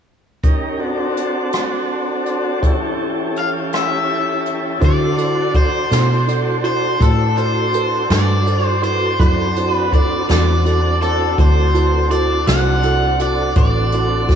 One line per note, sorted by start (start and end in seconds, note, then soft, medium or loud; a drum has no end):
0.43 0.80 C#4 soft
0.43 0.80 D#4 soft
0.43 0.80 G4 soft
0.43 0.80 A#4 soft
0.43 kick medium
0.43 closed hi-hat medium
0.79 2.60 C4 soft
0.79 2.60 D4 soft
0.79 2.61 F#4 medium
0.79 2.61 A4 medium
1.17 closed hi-hat soft
1.52 cross-stick medium
1.52 closed hi-hat medium
2.26 closed hi-hat soft
2.62 4.79 E3 soft
2.62 4.79 C#4 soft
2.62 4.79 G4 soft
2.62 4.79 A4 soft
2.62 kick medium
2.62 closed hi-hat medium
3.36 3.49 F5 medium
3.36 closed hi-hat soft
3.73 4.85 E5 medium
3.73 cross-stick medium
3.73 closed hi-hat medium
4.46 closed hi-hat soft
4.79 5.88 D3 medium
4.79 9.14 D4 medium
4.79 5.08 E4 medium
4.79 9.14 F#4 medium
4.79 5.09 F#4 medium
4.79 9.14 A4 medium
4.79 5.09 A4 medium
4.79 9.14 C5 medium
4.79 5.09 C5 medium
4.79 kick loud
4.79 closed hi-hat medium
4.85 5.52 D5 medium
5.17 5.45 E4 soft
5.17 5.45 F#4 soft
5.17 5.45 A4 soft
5.17 5.45 D5 medium
5.17 closed hi-hat soft
5.53 5.82 E4 soft
5.53 5.81 F#4 soft
5.53 5.82 A4 soft
5.53 5.82 C5 soft
5.53 6.64 C5 medium
5.53 kick medium
5.53 closed hi-hat medium
5.91 6.97 B2 medium
5.91 6.18 E4 soft
5.91 6.19 F#4 soft
5.91 6.19 A4 soft
5.91 6.19 C5 medium
5.91 snare medium
5.91 closed hi-hat medium
6.27 6.55 E4 soft
6.27 6.55 F#4 soft
6.27 6.55 A4 soft
6.27 6.55 D5 medium
6.27 closed hi-hat medium
6.63 6.91 E4 soft
6.63 6.91 F#4 soft
6.63 6.91 A4 soft
6.63 6.92 C5 medium
6.63 7.02 C5 medium
6.63 closed hi-hat soft
6.99 8.07 A2 medium
6.99 7.27 E4 soft
6.99 7.27 F#4 soft
6.99 7.28 A4 soft
6.99 7.39 A4 medium
6.99 7.28 B4 medium
6.99 kick medium
6.99 closed hi-hat medium
7.37 7.64 E4 soft
7.37 7.64 F#4 soft
7.37 7.65 A4 soft
7.37 8.11 C5 medium
7.37 7.65 C5 soft
7.37 closed hi-hat medium
7.73 8.00 E4 soft
7.73 8.01 F#4 soft
7.73 8.01 A4 soft
7.73 8.01 B4 medium
7.73 closed hi-hat medium
8.10 9.16 G2 medium
8.10 8.37 E4 soft
8.10 8.37 F#4 soft
8.10 8.37 A4 soft
8.10 8.38 B4 medium
8.10 8.66 D5 medium
8.10 snare medium
8.10 closed hi-hat medium
8.46 8.73 E4 soft
8.46 8.74 F#4 soft
8.46 8.74 A4 soft
8.46 8.74 C5 medium
8.46 closed hi-hat medium
8.66 8.84 C5 medium
8.81 9.09 E4 soft
8.81 9.10 F#4 soft
8.81 9.10 A4 soft
8.81 9.10 B4 medium
8.81 9.19 C5 medium
8.81 closed hi-hat soft
9.19 10.25 F#2 medium
9.19 13.53 C4 medium
9.19 13.53 D4 medium
9.19 9.46 E4 medium
9.19 9.47 F#4 medium
9.19 13.53 F#4 medium
9.19 9.47 A4 medium
9.19 13.53 A4 medium
9.19 9.73 C5 medium
9.19 9.47 D5 medium
9.19 kick medium
9.19 closed hi-hat medium
9.56 9.83 E4 soft
9.56 9.84 F#4 soft
9.56 9.84 A4 soft
9.56 9.84 C5 medium
9.56 closed hi-hat medium
9.73 9.94 B4 medium
9.93 10.20 E4 soft
9.93 10.20 F#4 soft
9.93 10.21 A4 soft
9.93 10.21 C5 medium
9.93 10.28 D5 medium
9.93 kick medium
9.93 closed hi-hat medium
10.28 11.35 E2 medium
10.28 10.56 E4 medium
10.28 10.56 F#4 soft
10.28 10.56 A4 soft
10.28 10.98 D5 medium
10.28 10.56 D5 soft
10.28 snare medium
10.28 closed hi-hat medium
10.65 10.92 E4 soft
10.65 10.92 F#4 soft
10.65 10.93 A4 soft
10.65 10.93 D5 medium
10.65 closed hi-hat soft
11.01 11.29 E4 soft
11.01 11.29 F#4 soft
11.01 11.29 A4 soft
11.01 11.36 A4 medium
11.01 11.29 C5 medium
11.01 closed hi-hat soft
11.38 12.44 D2 medium
11.38 11.65 E4 soft
11.38 11.65 F#4 soft
11.38 11.65 A4 soft
11.38 11.66 C5 medium
11.38 12.11 C5 medium
11.38 kick medium
11.38 closed hi-hat medium
11.74 12.01 E4 soft
11.74 12.02 F#4 soft
11.74 12.02 A4 soft
11.74 12.02 B4 medium
11.74 closed hi-hat medium
12.10 12.38 E4 soft
12.10 12.38 F#4 soft
12.10 12.38 A4 soft
12.10 12.39 C5 medium
12.10 12.48 D5 medium
12.10 closed hi-hat medium
12.47 13.53 C2 medium
12.47 12.74 E4 soft
12.47 12.74 F#4 soft
12.47 12.75 A4 soft
12.47 12.75 C5 medium
12.47 13.21 F#5 medium
12.47 snare medium
12.47 closed hi-hat medium
12.83 13.11 E4 soft
12.83 13.11 F#4 soft
12.83 13.11 A4 soft
12.83 13.11 D5 soft
12.83 closed hi-hat soft
13.19 13.47 E4 soft
13.19 13.47 F#4 soft
13.19 13.47 A4 soft
13.19 13.48 D5 medium
13.19 13.57 D5 medium
13.19 closed hi-hat medium
13.55 14.35 A1 medium
13.55 14.35 C4 medium
13.55 14.35 D4 medium
13.55 13.83 E4 medium
13.55 13.83 F#4 medium
13.55 14.35 F#4 medium
13.55 13.84 A4 medium
13.55 14.35 A4 medium
13.55 13.84 B4 medium
13.55 14.35 D5 medium
13.55 kick loud
13.55 closed hi-hat medium
13.92 14.20 E4 soft
13.92 14.20 F#4 soft
13.92 14.20 A4 soft
13.92 14.20 D5 medium
13.92 closed hi-hat medium
14.28 14.35 E4 soft
14.28 14.35 F#4 soft
14.28 14.35 A4 soft
14.28 14.35 C5 medium
14.28 kick medium
14.28 snare soft
14.28 closed hi-hat medium